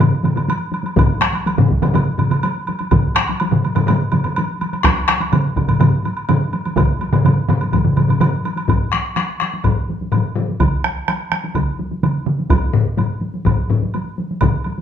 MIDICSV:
0, 0, Header, 1, 3, 480
1, 0, Start_track
1, 0, Tempo, 483092
1, 971, Time_signature, 4, 2, 24, 8
1, 7207, Tempo, 477327
1, 14811, End_track
2, 0, Start_track
2, 0, Title_t, "Taiko and cinematic ensemble drums"
2, 3, Note_on_c, 9, 45, 97
2, 4, Note_on_c, 9, 47, 94
2, 102, Note_off_c, 9, 45, 0
2, 103, Note_off_c, 9, 47, 0
2, 233, Note_on_c, 9, 48, 61
2, 239, Note_on_c, 9, 45, 62
2, 243, Note_on_c, 9, 47, 68
2, 332, Note_off_c, 9, 48, 0
2, 338, Note_off_c, 9, 45, 0
2, 342, Note_off_c, 9, 47, 0
2, 359, Note_on_c, 9, 45, 64
2, 360, Note_on_c, 9, 47, 67
2, 458, Note_off_c, 9, 45, 0
2, 459, Note_off_c, 9, 47, 0
2, 481, Note_on_c, 9, 48, 67
2, 580, Note_off_c, 9, 48, 0
2, 712, Note_on_c, 9, 48, 59
2, 811, Note_off_c, 9, 48, 0
2, 833, Note_on_c, 9, 48, 55
2, 933, Note_off_c, 9, 48, 0
2, 956, Note_on_c, 9, 48, 79
2, 959, Note_on_c, 9, 41, 112
2, 964, Note_on_c, 9, 45, 89
2, 966, Note_on_c, 9, 47, 96
2, 1055, Note_off_c, 9, 48, 0
2, 1058, Note_off_c, 9, 41, 0
2, 1063, Note_off_c, 9, 45, 0
2, 1065, Note_off_c, 9, 47, 0
2, 1201, Note_on_c, 9, 48, 59
2, 1202, Note_on_c, 9, 37, 77
2, 1209, Note_off_c, 9, 37, 0
2, 1209, Note_on_c, 9, 37, 68
2, 1301, Note_off_c, 9, 48, 0
2, 1309, Note_off_c, 9, 37, 0
2, 1321, Note_on_c, 9, 48, 54
2, 1421, Note_off_c, 9, 48, 0
2, 1454, Note_on_c, 9, 48, 70
2, 1553, Note_off_c, 9, 48, 0
2, 1568, Note_on_c, 9, 47, 91
2, 1572, Note_on_c, 9, 45, 101
2, 1667, Note_off_c, 9, 47, 0
2, 1671, Note_off_c, 9, 45, 0
2, 1690, Note_on_c, 9, 41, 75
2, 1697, Note_on_c, 9, 48, 55
2, 1790, Note_off_c, 9, 41, 0
2, 1796, Note_off_c, 9, 48, 0
2, 1809, Note_on_c, 9, 47, 86
2, 1812, Note_on_c, 9, 45, 100
2, 1812, Note_on_c, 9, 48, 51
2, 1908, Note_off_c, 9, 47, 0
2, 1911, Note_off_c, 9, 48, 0
2, 1912, Note_off_c, 9, 45, 0
2, 1925, Note_on_c, 9, 48, 68
2, 1930, Note_on_c, 9, 45, 88
2, 1934, Note_on_c, 9, 47, 97
2, 2024, Note_off_c, 9, 48, 0
2, 2029, Note_off_c, 9, 45, 0
2, 2034, Note_off_c, 9, 47, 0
2, 2164, Note_on_c, 9, 45, 65
2, 2172, Note_on_c, 9, 48, 56
2, 2173, Note_on_c, 9, 47, 70
2, 2264, Note_off_c, 9, 45, 0
2, 2271, Note_off_c, 9, 48, 0
2, 2273, Note_off_c, 9, 47, 0
2, 2290, Note_on_c, 9, 45, 64
2, 2295, Note_on_c, 9, 47, 65
2, 2390, Note_off_c, 9, 45, 0
2, 2394, Note_off_c, 9, 47, 0
2, 2419, Note_on_c, 9, 48, 64
2, 2519, Note_off_c, 9, 48, 0
2, 2670, Note_on_c, 9, 48, 56
2, 2769, Note_off_c, 9, 48, 0
2, 2786, Note_on_c, 9, 48, 46
2, 2886, Note_off_c, 9, 48, 0
2, 2896, Note_on_c, 9, 41, 92
2, 2898, Note_on_c, 9, 45, 83
2, 2901, Note_on_c, 9, 47, 97
2, 2905, Note_on_c, 9, 48, 69
2, 2995, Note_off_c, 9, 41, 0
2, 2997, Note_off_c, 9, 45, 0
2, 3001, Note_off_c, 9, 47, 0
2, 3005, Note_off_c, 9, 48, 0
2, 3138, Note_on_c, 9, 37, 79
2, 3141, Note_off_c, 9, 37, 0
2, 3141, Note_on_c, 9, 37, 70
2, 3145, Note_on_c, 9, 48, 52
2, 3241, Note_off_c, 9, 37, 0
2, 3245, Note_off_c, 9, 48, 0
2, 3275, Note_on_c, 9, 48, 54
2, 3375, Note_off_c, 9, 48, 0
2, 3390, Note_on_c, 9, 48, 69
2, 3489, Note_off_c, 9, 48, 0
2, 3496, Note_on_c, 9, 45, 94
2, 3500, Note_on_c, 9, 47, 93
2, 3595, Note_off_c, 9, 45, 0
2, 3599, Note_off_c, 9, 47, 0
2, 3631, Note_on_c, 9, 48, 53
2, 3729, Note_on_c, 9, 45, 91
2, 3731, Note_off_c, 9, 48, 0
2, 3741, Note_on_c, 9, 47, 94
2, 3751, Note_on_c, 9, 48, 52
2, 3828, Note_off_c, 9, 45, 0
2, 3840, Note_off_c, 9, 47, 0
2, 3850, Note_off_c, 9, 48, 0
2, 3850, Note_on_c, 9, 45, 92
2, 3865, Note_on_c, 9, 47, 90
2, 3876, Note_on_c, 9, 48, 73
2, 3950, Note_off_c, 9, 45, 0
2, 3964, Note_off_c, 9, 47, 0
2, 3975, Note_off_c, 9, 48, 0
2, 4095, Note_on_c, 9, 45, 65
2, 4101, Note_on_c, 9, 47, 68
2, 4109, Note_on_c, 9, 48, 60
2, 4195, Note_off_c, 9, 45, 0
2, 4200, Note_off_c, 9, 47, 0
2, 4208, Note_off_c, 9, 48, 0
2, 4215, Note_on_c, 9, 45, 67
2, 4225, Note_on_c, 9, 47, 60
2, 4314, Note_off_c, 9, 45, 0
2, 4324, Note_off_c, 9, 47, 0
2, 4352, Note_on_c, 9, 48, 65
2, 4451, Note_off_c, 9, 48, 0
2, 4584, Note_on_c, 9, 48, 53
2, 4684, Note_off_c, 9, 48, 0
2, 4699, Note_on_c, 9, 48, 50
2, 4799, Note_off_c, 9, 48, 0
2, 4811, Note_on_c, 9, 41, 102
2, 4812, Note_on_c, 9, 37, 71
2, 4817, Note_off_c, 9, 37, 0
2, 4817, Note_on_c, 9, 37, 72
2, 4819, Note_on_c, 9, 48, 83
2, 4910, Note_off_c, 9, 41, 0
2, 4916, Note_off_c, 9, 37, 0
2, 4919, Note_off_c, 9, 48, 0
2, 5045, Note_on_c, 9, 37, 78
2, 5055, Note_off_c, 9, 37, 0
2, 5055, Note_on_c, 9, 37, 69
2, 5056, Note_on_c, 9, 48, 52
2, 5154, Note_off_c, 9, 37, 0
2, 5155, Note_off_c, 9, 48, 0
2, 5172, Note_on_c, 9, 48, 57
2, 5271, Note_off_c, 9, 48, 0
2, 5285, Note_on_c, 9, 45, 91
2, 5295, Note_on_c, 9, 47, 92
2, 5296, Note_on_c, 9, 48, 69
2, 5385, Note_off_c, 9, 45, 0
2, 5394, Note_off_c, 9, 47, 0
2, 5395, Note_off_c, 9, 48, 0
2, 5526, Note_on_c, 9, 41, 70
2, 5528, Note_on_c, 9, 45, 75
2, 5533, Note_on_c, 9, 47, 71
2, 5540, Note_on_c, 9, 48, 52
2, 5625, Note_off_c, 9, 41, 0
2, 5627, Note_off_c, 9, 45, 0
2, 5633, Note_off_c, 9, 47, 0
2, 5640, Note_off_c, 9, 48, 0
2, 5645, Note_on_c, 9, 45, 62
2, 5648, Note_on_c, 9, 47, 64
2, 5665, Note_on_c, 9, 48, 51
2, 5744, Note_off_c, 9, 45, 0
2, 5747, Note_off_c, 9, 47, 0
2, 5761, Note_on_c, 9, 45, 96
2, 5764, Note_off_c, 9, 48, 0
2, 5770, Note_on_c, 9, 47, 95
2, 5777, Note_on_c, 9, 48, 68
2, 5860, Note_off_c, 9, 45, 0
2, 5869, Note_off_c, 9, 47, 0
2, 5877, Note_off_c, 9, 48, 0
2, 6017, Note_on_c, 9, 48, 57
2, 6116, Note_off_c, 9, 48, 0
2, 6247, Note_on_c, 9, 45, 96
2, 6253, Note_on_c, 9, 47, 97
2, 6259, Note_on_c, 9, 48, 67
2, 6346, Note_off_c, 9, 45, 0
2, 6353, Note_off_c, 9, 47, 0
2, 6359, Note_off_c, 9, 48, 0
2, 6492, Note_on_c, 9, 48, 54
2, 6591, Note_off_c, 9, 48, 0
2, 6613, Note_on_c, 9, 48, 47
2, 6712, Note_off_c, 9, 48, 0
2, 6722, Note_on_c, 9, 41, 103
2, 6723, Note_on_c, 9, 45, 96
2, 6726, Note_on_c, 9, 47, 97
2, 6732, Note_on_c, 9, 48, 67
2, 6822, Note_off_c, 9, 41, 0
2, 6822, Note_off_c, 9, 45, 0
2, 6826, Note_off_c, 9, 47, 0
2, 6832, Note_off_c, 9, 48, 0
2, 6969, Note_on_c, 9, 48, 50
2, 7068, Note_off_c, 9, 48, 0
2, 7081, Note_on_c, 9, 47, 90
2, 7082, Note_on_c, 9, 45, 103
2, 7096, Note_on_c, 9, 48, 50
2, 7180, Note_off_c, 9, 47, 0
2, 7182, Note_off_c, 9, 45, 0
2, 7195, Note_off_c, 9, 48, 0
2, 7201, Note_on_c, 9, 47, 90
2, 7206, Note_on_c, 9, 45, 84
2, 7211, Note_on_c, 9, 48, 65
2, 7301, Note_off_c, 9, 47, 0
2, 7306, Note_off_c, 9, 45, 0
2, 7312, Note_off_c, 9, 48, 0
2, 7440, Note_on_c, 9, 47, 91
2, 7442, Note_on_c, 9, 45, 97
2, 7461, Note_on_c, 9, 48, 46
2, 7541, Note_off_c, 9, 47, 0
2, 7543, Note_off_c, 9, 45, 0
2, 7562, Note_off_c, 9, 48, 0
2, 7579, Note_on_c, 9, 48, 48
2, 7679, Note_off_c, 9, 48, 0
2, 7680, Note_on_c, 9, 45, 66
2, 7683, Note_on_c, 9, 41, 63
2, 7686, Note_on_c, 9, 47, 61
2, 7699, Note_on_c, 9, 48, 69
2, 7780, Note_off_c, 9, 45, 0
2, 7784, Note_off_c, 9, 41, 0
2, 7786, Note_off_c, 9, 47, 0
2, 7800, Note_off_c, 9, 48, 0
2, 7802, Note_on_c, 9, 45, 60
2, 7807, Note_on_c, 9, 47, 67
2, 7903, Note_off_c, 9, 45, 0
2, 7907, Note_off_c, 9, 47, 0
2, 7920, Note_on_c, 9, 45, 68
2, 7929, Note_on_c, 9, 47, 68
2, 7936, Note_on_c, 9, 48, 54
2, 8021, Note_off_c, 9, 45, 0
2, 8030, Note_off_c, 9, 47, 0
2, 8036, Note_off_c, 9, 48, 0
2, 8039, Note_on_c, 9, 45, 66
2, 8043, Note_on_c, 9, 47, 61
2, 8052, Note_on_c, 9, 48, 49
2, 8139, Note_off_c, 9, 45, 0
2, 8143, Note_off_c, 9, 47, 0
2, 8153, Note_off_c, 9, 48, 0
2, 8161, Note_on_c, 9, 45, 90
2, 8164, Note_on_c, 9, 47, 90
2, 8173, Note_on_c, 9, 48, 62
2, 8261, Note_off_c, 9, 45, 0
2, 8265, Note_off_c, 9, 47, 0
2, 8273, Note_off_c, 9, 48, 0
2, 8413, Note_on_c, 9, 48, 53
2, 8514, Note_off_c, 9, 48, 0
2, 8524, Note_on_c, 9, 48, 47
2, 8624, Note_off_c, 9, 48, 0
2, 8641, Note_on_c, 9, 45, 80
2, 8644, Note_on_c, 9, 41, 81
2, 8651, Note_on_c, 9, 48, 54
2, 8741, Note_off_c, 9, 45, 0
2, 8744, Note_off_c, 9, 41, 0
2, 8752, Note_off_c, 9, 48, 0
2, 8880, Note_on_c, 9, 37, 64
2, 8896, Note_on_c, 9, 48, 40
2, 8981, Note_off_c, 9, 37, 0
2, 8997, Note_off_c, 9, 48, 0
2, 9126, Note_on_c, 9, 37, 60
2, 9135, Note_on_c, 9, 48, 54
2, 9227, Note_off_c, 9, 37, 0
2, 9235, Note_off_c, 9, 48, 0
2, 9366, Note_on_c, 9, 37, 60
2, 9385, Note_on_c, 9, 48, 42
2, 9467, Note_off_c, 9, 37, 0
2, 9486, Note_off_c, 9, 48, 0
2, 9503, Note_on_c, 9, 48, 43
2, 9603, Note_off_c, 9, 48, 0
2, 9605, Note_on_c, 9, 45, 78
2, 9609, Note_on_c, 9, 41, 68
2, 9619, Note_on_c, 9, 48, 59
2, 9705, Note_off_c, 9, 45, 0
2, 9710, Note_off_c, 9, 41, 0
2, 9720, Note_off_c, 9, 48, 0
2, 9862, Note_on_c, 9, 48, 48
2, 9962, Note_off_c, 9, 48, 0
2, 9981, Note_on_c, 9, 48, 43
2, 10082, Note_off_c, 9, 48, 0
2, 10087, Note_on_c, 9, 45, 90
2, 10102, Note_on_c, 9, 48, 56
2, 10188, Note_off_c, 9, 45, 0
2, 10203, Note_off_c, 9, 48, 0
2, 10325, Note_on_c, 9, 45, 84
2, 10347, Note_on_c, 9, 48, 46
2, 10426, Note_off_c, 9, 45, 0
2, 10447, Note_off_c, 9, 48, 0
2, 10464, Note_on_c, 9, 48, 42
2, 10564, Note_off_c, 9, 48, 0
2, 10570, Note_on_c, 9, 41, 89
2, 10576, Note_on_c, 9, 47, 80
2, 10579, Note_on_c, 9, 48, 63
2, 10670, Note_off_c, 9, 41, 0
2, 10676, Note_off_c, 9, 47, 0
2, 10679, Note_off_c, 9, 48, 0
2, 10817, Note_on_c, 9, 37, 64
2, 10817, Note_on_c, 9, 48, 43
2, 10918, Note_off_c, 9, 37, 0
2, 10918, Note_off_c, 9, 48, 0
2, 11055, Note_on_c, 9, 37, 60
2, 11059, Note_on_c, 9, 48, 56
2, 11156, Note_off_c, 9, 37, 0
2, 11160, Note_off_c, 9, 48, 0
2, 11293, Note_on_c, 9, 37, 71
2, 11297, Note_on_c, 9, 48, 45
2, 11393, Note_off_c, 9, 37, 0
2, 11397, Note_off_c, 9, 48, 0
2, 11415, Note_on_c, 9, 48, 45
2, 11516, Note_off_c, 9, 48, 0
2, 11523, Note_on_c, 9, 41, 73
2, 11534, Note_on_c, 9, 48, 62
2, 11535, Note_on_c, 9, 47, 78
2, 11624, Note_off_c, 9, 41, 0
2, 11634, Note_off_c, 9, 48, 0
2, 11636, Note_off_c, 9, 47, 0
2, 11772, Note_on_c, 9, 48, 50
2, 11872, Note_off_c, 9, 48, 0
2, 11893, Note_on_c, 9, 48, 45
2, 11994, Note_off_c, 9, 48, 0
2, 12012, Note_on_c, 9, 47, 85
2, 12013, Note_on_c, 9, 48, 61
2, 12113, Note_off_c, 9, 47, 0
2, 12113, Note_off_c, 9, 48, 0
2, 12246, Note_on_c, 9, 47, 82
2, 12251, Note_on_c, 9, 48, 46
2, 12346, Note_off_c, 9, 47, 0
2, 12352, Note_off_c, 9, 48, 0
2, 12371, Note_on_c, 9, 48, 42
2, 12472, Note_off_c, 9, 48, 0
2, 12479, Note_on_c, 9, 48, 69
2, 12480, Note_on_c, 9, 45, 59
2, 12485, Note_on_c, 9, 41, 100
2, 12580, Note_off_c, 9, 48, 0
2, 12581, Note_off_c, 9, 45, 0
2, 12585, Note_off_c, 9, 41, 0
2, 12603, Note_on_c, 9, 45, 57
2, 12703, Note_off_c, 9, 45, 0
2, 12719, Note_on_c, 9, 45, 93
2, 12727, Note_on_c, 9, 48, 46
2, 12819, Note_off_c, 9, 45, 0
2, 12828, Note_off_c, 9, 48, 0
2, 12959, Note_on_c, 9, 48, 62
2, 12963, Note_on_c, 9, 45, 80
2, 13060, Note_off_c, 9, 48, 0
2, 13063, Note_off_c, 9, 45, 0
2, 13201, Note_on_c, 9, 48, 47
2, 13301, Note_off_c, 9, 48, 0
2, 13326, Note_on_c, 9, 48, 46
2, 13427, Note_off_c, 9, 48, 0
2, 13438, Note_on_c, 9, 45, 84
2, 13445, Note_on_c, 9, 48, 58
2, 13449, Note_on_c, 9, 41, 73
2, 13539, Note_off_c, 9, 45, 0
2, 13545, Note_off_c, 9, 48, 0
2, 13549, Note_off_c, 9, 41, 0
2, 13686, Note_on_c, 9, 45, 85
2, 13693, Note_on_c, 9, 48, 51
2, 13786, Note_off_c, 9, 45, 0
2, 13793, Note_off_c, 9, 48, 0
2, 13819, Note_on_c, 9, 48, 50
2, 13919, Note_off_c, 9, 48, 0
2, 13937, Note_on_c, 9, 48, 57
2, 14038, Note_off_c, 9, 48, 0
2, 14173, Note_on_c, 9, 48, 53
2, 14273, Note_off_c, 9, 48, 0
2, 14302, Note_on_c, 9, 48, 45
2, 14401, Note_on_c, 9, 45, 83
2, 14403, Note_off_c, 9, 48, 0
2, 14410, Note_on_c, 9, 41, 76
2, 14411, Note_on_c, 9, 48, 70
2, 14412, Note_on_c, 9, 47, 93
2, 14502, Note_off_c, 9, 45, 0
2, 14511, Note_off_c, 9, 41, 0
2, 14511, Note_off_c, 9, 48, 0
2, 14512, Note_off_c, 9, 47, 0
2, 14657, Note_on_c, 9, 48, 48
2, 14757, Note_off_c, 9, 48, 0
2, 14773, Note_on_c, 9, 48, 45
2, 14811, Note_off_c, 9, 48, 0
2, 14811, End_track
3, 0, Start_track
3, 0, Title_t, "Drums"
3, 7, Note_on_c, 9, 76, 49
3, 106, Note_off_c, 9, 76, 0
3, 249, Note_on_c, 9, 76, 38
3, 348, Note_off_c, 9, 76, 0
3, 370, Note_on_c, 9, 76, 42
3, 469, Note_off_c, 9, 76, 0
3, 494, Note_on_c, 9, 76, 55
3, 593, Note_off_c, 9, 76, 0
3, 733, Note_on_c, 9, 76, 40
3, 833, Note_off_c, 9, 76, 0
3, 854, Note_on_c, 9, 76, 38
3, 953, Note_off_c, 9, 76, 0
3, 981, Note_on_c, 9, 76, 55
3, 1081, Note_off_c, 9, 76, 0
3, 1221, Note_on_c, 9, 76, 40
3, 1321, Note_off_c, 9, 76, 0
3, 1343, Note_on_c, 9, 76, 42
3, 1442, Note_off_c, 9, 76, 0
3, 1461, Note_on_c, 9, 76, 49
3, 1560, Note_off_c, 9, 76, 0
3, 1817, Note_on_c, 9, 76, 43
3, 1916, Note_off_c, 9, 76, 0
3, 1940, Note_on_c, 9, 76, 47
3, 2040, Note_off_c, 9, 76, 0
3, 2176, Note_on_c, 9, 76, 43
3, 2275, Note_off_c, 9, 76, 0
3, 2298, Note_on_c, 9, 76, 46
3, 2397, Note_off_c, 9, 76, 0
3, 2415, Note_on_c, 9, 76, 58
3, 2515, Note_off_c, 9, 76, 0
3, 2655, Note_on_c, 9, 76, 45
3, 2754, Note_off_c, 9, 76, 0
3, 2771, Note_on_c, 9, 76, 41
3, 2870, Note_off_c, 9, 76, 0
3, 2893, Note_on_c, 9, 76, 55
3, 2992, Note_off_c, 9, 76, 0
3, 3128, Note_on_c, 9, 76, 39
3, 3227, Note_off_c, 9, 76, 0
3, 3255, Note_on_c, 9, 76, 44
3, 3354, Note_off_c, 9, 76, 0
3, 3377, Note_on_c, 9, 76, 55
3, 3476, Note_off_c, 9, 76, 0
3, 3623, Note_on_c, 9, 76, 42
3, 3722, Note_off_c, 9, 76, 0
3, 3735, Note_on_c, 9, 76, 47
3, 3834, Note_off_c, 9, 76, 0
3, 3856, Note_on_c, 9, 76, 51
3, 3956, Note_off_c, 9, 76, 0
3, 4090, Note_on_c, 9, 76, 47
3, 4190, Note_off_c, 9, 76, 0
3, 4214, Note_on_c, 9, 76, 50
3, 4313, Note_off_c, 9, 76, 0
3, 4336, Note_on_c, 9, 76, 58
3, 4435, Note_off_c, 9, 76, 0
3, 4583, Note_on_c, 9, 76, 49
3, 4682, Note_off_c, 9, 76, 0
3, 4702, Note_on_c, 9, 76, 47
3, 4802, Note_off_c, 9, 76, 0
3, 4819, Note_on_c, 9, 76, 65
3, 4918, Note_off_c, 9, 76, 0
3, 5060, Note_on_c, 9, 76, 43
3, 5160, Note_off_c, 9, 76, 0
3, 5178, Note_on_c, 9, 76, 49
3, 5278, Note_off_c, 9, 76, 0
3, 5292, Note_on_c, 9, 76, 58
3, 5391, Note_off_c, 9, 76, 0
3, 5533, Note_on_c, 9, 76, 42
3, 5633, Note_off_c, 9, 76, 0
3, 5650, Note_on_c, 9, 76, 50
3, 5749, Note_off_c, 9, 76, 0
3, 5769, Note_on_c, 9, 76, 50
3, 5868, Note_off_c, 9, 76, 0
3, 6015, Note_on_c, 9, 76, 40
3, 6114, Note_off_c, 9, 76, 0
3, 6127, Note_on_c, 9, 76, 41
3, 6226, Note_off_c, 9, 76, 0
3, 6246, Note_on_c, 9, 76, 55
3, 6346, Note_off_c, 9, 76, 0
3, 6488, Note_on_c, 9, 76, 43
3, 6587, Note_off_c, 9, 76, 0
3, 6612, Note_on_c, 9, 76, 39
3, 6711, Note_off_c, 9, 76, 0
3, 6732, Note_on_c, 9, 76, 56
3, 6831, Note_off_c, 9, 76, 0
3, 6965, Note_on_c, 9, 76, 41
3, 7064, Note_off_c, 9, 76, 0
3, 7089, Note_on_c, 9, 76, 44
3, 7188, Note_off_c, 9, 76, 0
3, 7210, Note_on_c, 9, 76, 49
3, 7311, Note_off_c, 9, 76, 0
3, 7452, Note_on_c, 9, 76, 39
3, 7553, Note_off_c, 9, 76, 0
3, 7565, Note_on_c, 9, 76, 42
3, 7666, Note_off_c, 9, 76, 0
3, 7687, Note_on_c, 9, 76, 44
3, 7788, Note_off_c, 9, 76, 0
3, 7926, Note_on_c, 9, 76, 42
3, 8027, Note_off_c, 9, 76, 0
3, 8060, Note_on_c, 9, 76, 43
3, 8161, Note_off_c, 9, 76, 0
3, 8171, Note_on_c, 9, 76, 54
3, 8272, Note_off_c, 9, 76, 0
3, 8414, Note_on_c, 9, 76, 43
3, 8514, Note_off_c, 9, 76, 0
3, 8535, Note_on_c, 9, 76, 45
3, 8636, Note_off_c, 9, 76, 0
3, 8657, Note_on_c, 9, 76, 47
3, 8757, Note_off_c, 9, 76, 0
3, 9129, Note_on_c, 9, 76, 35
3, 9229, Note_off_c, 9, 76, 0
3, 9609, Note_on_c, 9, 76, 44
3, 9710, Note_off_c, 9, 76, 0
3, 10092, Note_on_c, 9, 76, 44
3, 10192, Note_off_c, 9, 76, 0
3, 10573, Note_on_c, 9, 76, 54
3, 10674, Note_off_c, 9, 76, 0
3, 11057, Note_on_c, 9, 76, 42
3, 11157, Note_off_c, 9, 76, 0
3, 11529, Note_on_c, 9, 76, 49
3, 11630, Note_off_c, 9, 76, 0
3, 12014, Note_on_c, 9, 76, 41
3, 12115, Note_off_c, 9, 76, 0
3, 12485, Note_on_c, 9, 76, 52
3, 12586, Note_off_c, 9, 76, 0
3, 12970, Note_on_c, 9, 76, 38
3, 13071, Note_off_c, 9, 76, 0
3, 13452, Note_on_c, 9, 76, 48
3, 13552, Note_off_c, 9, 76, 0
3, 13929, Note_on_c, 9, 76, 37
3, 14030, Note_off_c, 9, 76, 0
3, 14401, Note_on_c, 9, 76, 53
3, 14501, Note_off_c, 9, 76, 0
3, 14638, Note_on_c, 9, 76, 34
3, 14739, Note_off_c, 9, 76, 0
3, 14811, End_track
0, 0, End_of_file